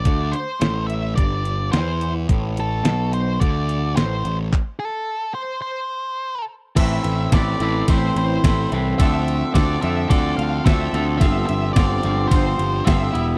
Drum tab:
CC |--------|--------|--------|x-------|
RD |--------|--------|--------|xxxxxxxx|
HH |xxxxxxxx|xxxxxxxx|--------|--------|
CP |--------|--------|x-------|--------|
SD |--o---o-|--o---o-|--------|--o---o-|
BD |o---o---|o---o---|o-------|o-o-o-o-|

CC |--------|--------|
RD |xxxxxxxx|xxxxxxxx|
HH |--------|--------|
CP |--------|--------|
SD |--o---oo|--o---o-|
BD |o-o-o-o-|o-o-o-o-|